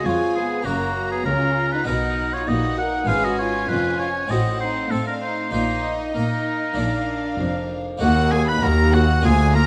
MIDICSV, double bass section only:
0, 0, Header, 1, 2, 480
1, 0, Start_track
1, 0, Key_signature, -6, "minor"
1, 0, Tempo, 607903
1, 522, Time_signature, 4, 2, 24, 8
1, 3884, Tempo, 617284
1, 7575, End_track
2, 0, Start_track
2, 0, Title_t, "Double bass section"
2, 0, Program_c, 0, 48
2, 43, Note_on_c, 0, 41, 59
2, 490, Note_off_c, 0, 41, 0
2, 517, Note_on_c, 0, 30, 66
2, 966, Note_off_c, 0, 30, 0
2, 995, Note_on_c, 0, 37, 65
2, 1445, Note_off_c, 0, 37, 0
2, 1474, Note_on_c, 0, 35, 55
2, 1925, Note_off_c, 0, 35, 0
2, 1959, Note_on_c, 0, 34, 58
2, 2408, Note_off_c, 0, 34, 0
2, 2441, Note_on_c, 0, 32, 63
2, 2889, Note_off_c, 0, 32, 0
2, 2921, Note_on_c, 0, 29, 57
2, 3369, Note_off_c, 0, 29, 0
2, 3401, Note_on_c, 0, 33, 60
2, 3853, Note_off_c, 0, 33, 0
2, 3880, Note_on_c, 0, 45, 53
2, 4333, Note_off_c, 0, 45, 0
2, 4360, Note_on_c, 0, 34, 59
2, 4816, Note_off_c, 0, 34, 0
2, 4844, Note_on_c, 0, 46, 52
2, 5299, Note_off_c, 0, 46, 0
2, 5325, Note_on_c, 0, 34, 55
2, 5779, Note_off_c, 0, 34, 0
2, 5810, Note_on_c, 0, 29, 54
2, 6261, Note_off_c, 0, 29, 0
2, 6289, Note_on_c, 0, 39, 83
2, 6713, Note_off_c, 0, 39, 0
2, 6770, Note_on_c, 0, 39, 83
2, 7190, Note_off_c, 0, 39, 0
2, 7243, Note_on_c, 0, 38, 78
2, 7575, Note_off_c, 0, 38, 0
2, 7575, End_track
0, 0, End_of_file